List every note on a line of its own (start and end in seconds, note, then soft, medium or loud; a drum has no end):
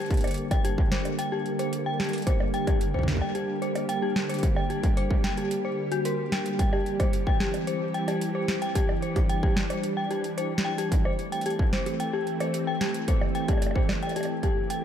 0.00 6.55 D3 medium
0.00 10.88 G3 medium
0.00 6.55 A#3 medium
0.00 10.88 G4 medium
0.00 closed hi-hat soft
0.06 closed hi-hat soft
0.11 kick loud
0.11 closed hi-hat soft
0.14 closed hi-hat soft
0.17 closed hi-hat soft
0.21 0.29 C5 medium
0.21 closed hi-hat soft
0.24 closed hi-hat soft
0.24 high bongo medium
0.28 closed hi-hat medium
0.31 closed hi-hat medium
0.34 closed hi-hat medium
0.38 closed hi-hat soft
0.51 0.60 G5 medium
0.51 kick loud
0.51 closed hi-hat medium
0.51 high bongo medium
0.65 0.73 G4 medium
0.65 closed hi-hat medium
0.78 kick loud
0.92 0.97 C5 medium
0.92 snare loud
1.05 closed hi-hat medium
1.05 high bongo soft
1.19 1.27 G5 loud
1.19 closed hi-hat medium
1.32 1.41 G4 medium
1.46 closed hi-hat soft
1.59 1.64 C5 medium
1.59 closed hi-hat medium
1.73 closed hi-hat medium
1.86 1.95 G5 loud
2.00 2.08 G4 medium
2.00 snare loud
2.00 closed hi-hat soft
2.04 closed hi-hat soft
2.09 closed hi-hat soft
2.13 closed hi-hat medium
2.18 closed hi-hat soft
2.22 closed hi-hat soft
2.27 2.32 C5 medium
2.27 kick loud
2.27 closed hi-hat medium
2.40 high bongo soft
2.54 2.62 G5 loud
2.54 closed hi-hat soft
2.67 2.76 G4 medium
2.67 kick loud
2.67 closed hi-hat medium
2.67 high bongo soft
2.81 closed hi-hat medium
2.94 2.99 C5 medium
2.94 kick soft
2.99 kick medium
3.03 kick medium
3.08 kick medium
3.08 snare loud
3.12 kick medium
3.17 kick loud
3.21 3.30 G5 medium
3.21 high bongo soft
3.35 3.44 G4 medium
3.35 closed hi-hat medium
3.62 3.67 C5 medium
3.62 closed hi-hat soft
3.75 closed hi-hat medium
3.75 high bongo soft
3.89 3.98 G5 loud
3.89 closed hi-hat medium
4.02 4.11 G4 medium
4.16 snare loud
4.29 4.35 C5 medium
4.29 closed hi-hat medium
4.34 closed hi-hat soft
4.39 closed hi-hat soft
4.43 kick loud
4.43 closed hi-hat medium
4.56 4.65 G5 loud
4.56 high bongo medium
4.70 4.79 G4 medium
4.70 closed hi-hat soft
4.84 kick loud
4.84 closed hi-hat soft
4.97 5.02 C5 medium
4.97 closed hi-hat medium
5.11 kick loud
5.24 5.33 G5 loud
5.24 snare loud
5.24 closed hi-hat soft
5.37 5.46 G4 medium
5.37 closed hi-hat medium
5.51 closed hi-hat medium
5.65 5.70 C5 medium
5.92 6.00 F#4 loud
5.92 closed hi-hat medium
6.05 6.14 A#4 medium
6.05 closed hi-hat medium
6.32 6.41 G5 medium
6.32 snare loud
6.32 closed hi-hat medium
6.46 closed hi-hat medium
6.59 10.88 E3 medium
6.59 8.73 C4 medium
6.59 6.68 G5 loud
6.59 kick loud
6.59 closed hi-hat medium
6.73 6.81 G4 medium
6.73 high bongo medium
6.86 closed hi-hat soft
7.00 7.05 C5 medium
7.00 kick loud
7.00 closed hi-hat soft
7.00 high bongo medium
7.13 closed hi-hat medium
7.27 7.35 G5 medium
7.27 kick loud
7.40 7.49 G4 medium
7.40 snare loud
7.54 closed hi-hat soft
7.54 high bongo soft
7.67 7.73 C5 medium
7.67 closed hi-hat medium
7.94 8.03 G5 loud
7.94 closed hi-hat soft
8.08 8.17 G4 medium
8.08 closed hi-hat soft
8.08 high bongo soft
8.21 closed hi-hat medium
8.35 8.40 C5 medium
8.48 snare loud
8.48 closed hi-hat soft
8.62 8.71 G5 loud
8.62 closed hi-hat medium
8.75 10.89 D4 medium
8.75 8.84 G4 medium
8.75 kick loud
8.75 closed hi-hat medium
8.89 high bongo medium
9.02 9.08 C5 medium
9.02 closed hi-hat soft
9.16 kick loud
9.16 closed hi-hat soft
9.16 high bongo medium
9.29 9.38 G5 loud
9.29 closed hi-hat medium
9.43 9.52 G4 medium
9.43 kick loud
9.57 snare loud
9.70 9.75 C5 medium
9.70 closed hi-hat soft
9.70 high bongo soft
9.84 closed hi-hat medium
9.97 10.06 G5 loud
10.11 10.19 G4 medium
10.11 closed hi-hat soft
10.24 closed hi-hat soft
10.38 10.43 C5 medium
10.38 closed hi-hat medium
10.58 snare loud
10.65 10.73 G5 loud
10.78 10.87 G4 medium
10.78 closed hi-hat medium
10.92 14.84 E3 medium
10.92 14.84 A3 medium
10.92 14.84 C4 medium
10.92 14.84 G4 medium
10.92 kick loud
10.92 closed hi-hat medium
11.05 11.10 C5 medium
11.05 high bongo medium
11.19 closed hi-hat soft
11.32 11.41 G5 loud
11.32 closed hi-hat soft
11.41 closed hi-hat soft
11.46 11.54 G4 medium
11.46 closed hi-hat medium
11.50 closed hi-hat soft
11.59 kick medium
11.73 11.78 C5 medium
11.73 snare loud
11.86 closed hi-hat soft
11.86 high bongo soft
12.00 12.08 G5 loud
12.00 closed hi-hat medium
12.13 12.22 G4 medium
12.27 closed hi-hat soft
12.40 12.46 C5 medium
12.40 closed hi-hat soft
12.40 high bongo medium
12.54 closed hi-hat medium
12.67 12.76 G5 loud
12.81 12.90 G4 medium
12.81 snare loud
12.81 closed hi-hat medium
12.94 closed hi-hat medium
13.08 13.13 C5 medium
13.08 kick loud
13.08 closed hi-hat medium
13.21 high bongo medium
13.35 13.44 G5 loud
13.35 closed hi-hat soft
13.48 13.57 G4 medium
13.48 kick loud
13.48 closed hi-hat medium
13.48 high bongo soft
13.53 high bongo soft
13.57 high bongo soft
13.62 closed hi-hat medium
13.62 high bongo soft
13.66 high bongo soft
13.71 high bongo soft
13.76 13.81 C5 medium
13.76 kick loud
13.89 snare loud
13.89 closed hi-hat soft
13.89 high bongo medium
14.03 14.11 G5 loud
14.03 closed hi-hat soft
14.03 high bongo soft
14.07 closed hi-hat soft
14.07 high bongo soft
14.12 high bongo soft
14.16 14.25 G4 medium
14.16 closed hi-hat medium
14.16 high bongo soft
14.21 closed hi-hat soft
14.21 high bongo soft
14.25 high bongo soft
14.43 14.56 G4 medium
14.43 kick medium
14.43 closed hi-hat soft
14.70 14.75 G5 medium
14.70 closed hi-hat medium